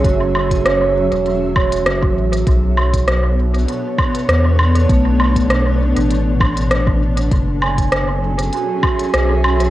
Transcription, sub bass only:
X:1
M:4/4
L:1/16
Q:"Swing 16ths" 1/4=99
K:Bdor
V:1 name="Sub bass" clef=bass
F,,,6- F,,, E,,,4- E,,, F,,,2 A,,,2 | B,,,8 z4 E,,4 | B,,,6- B,,, A,,,8- A,,, | F,,,8 z4 B,,,4 |]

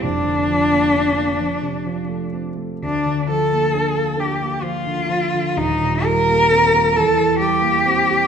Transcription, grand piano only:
X:1
M:6/8
L:1/16
Q:3/8=44
K:Bb
V:1 name="Grand piano" clef=bass
[F,,,F,,] D, F, B, D B, F,, C, F, A, C A, | D,, D, F, B, D B, D B, F, D, F, D, | [E,,,E,,] B,, G, B, C B, =E,, =E, G, B, C G |]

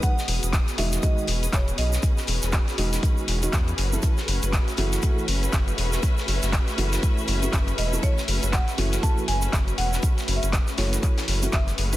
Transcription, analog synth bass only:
X:1
M:4/4
L:1/16
Q:"Swing 16ths" 1/4=120
K:F#dor
V:1 name="Analog synth bass" clef=bass
z2 E,,, E,,, z2 E,,, z3 E,,, z E,,, z B,,, z | z2 E,,, E,,, z2 E,,, z3 E,,, z E,, z F,,, z | z2 F,,, F,,, z2 F,,, z3 F,,, z F,,, z E,,, z | z2 F,,, F,,, z2 F,,, z3 F,,, z F,,, z E,,, z |
z2 F,,, F,,, z2 F,,, z3 F,,, z F,,, z E,,, z | z2 F,,, F,,, z2 F,,, z3 F,,, z F,,, z F,,, z |]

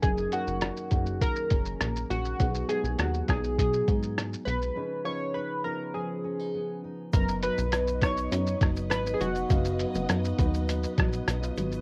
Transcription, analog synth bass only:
X:1
M:4/4
L:1/16
Q:1/4=101
K:Blyd
V:1 name="Analog synth bass" clef=bass
F,,,2 z F,,,2 z F,,,3 z F,,,2 A,,,2 A,,,2 | B,,,2 z B,,, D,,2 B,,,2 B,,2 G,,4 B,,,2 | z16 | F,,,3 B,,,4- B,,, F,,2 F,,,2 G,,,2 E,,,2 |
F,,,3 F,,, F,,2 D,,4 A,,,2 B,,,2 G,,,2 |]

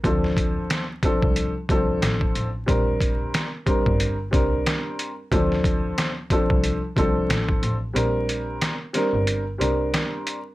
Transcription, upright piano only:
X:1
M:4/4
L:1/8
Q:"Swing 16ths" 1/4=91
K:Dm
V:1 name="Upright piano"
[F,CDA]2 z [F,CDA] z [F,CDA]2 z | [G,CDB]2 z [G,CDB] z [G,CDB]2 z | [F,CDA]2 z [F,CDA] z [F,CDA]2 z | [G,CDB]2 z [G,CDB] z [G,CDB]2 z |]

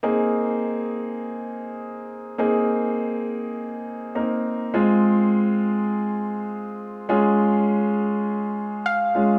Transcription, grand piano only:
X:1
M:4/4
L:1/8
Q:1/4=102
K:Ab
V:1 name="Grand piano"
[B,CEA]8 | [B,CEA]6 [B,CEB]2 | [A,CFA]8 | [A,DFA]6- [A,DFA] [A,DFA] |]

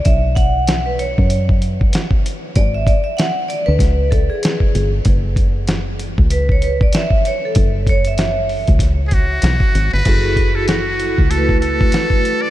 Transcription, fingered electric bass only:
X:1
M:4/4
L:1/16
Q:"Swing 16ths" 1/4=96
K:F#m
V:1 name="Fingered electric bass" clef=bass
B,,,6- B,,, F,,4- F,, z4 | G,,,3 z4 D,, C,,4 z2 =G,,,2 | F,,,6- F,,, C,,4- C,, z4 | F,,,6- F,,, C,,4- C,, B,,, z G,,, =G,,, |
F,,,6- F,,, C,,4- C,, z4 |]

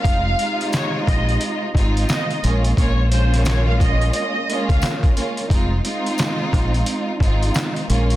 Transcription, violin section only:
X:1
M:4/4
L:1/16
Q:"Swing 16ths" 1/4=88
K:Fm
V:1 name="Violin section"
f4 d2 e3 z3 e2 z2 | d2 c2 d f e2 e3 f z4 | z16 |]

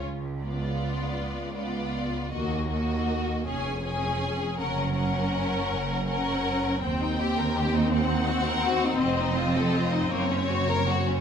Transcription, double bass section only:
X:1
M:6/8
L:1/8
Q:3/8=53
K:F#
V:1 name="Double bass section" clef=bass
C,,3 C,,3 | D,,3 E,,,3 | F,,,3 F,,,3 | [K:Cdor] E,,6 |
F,,,3 _G,,,3 |]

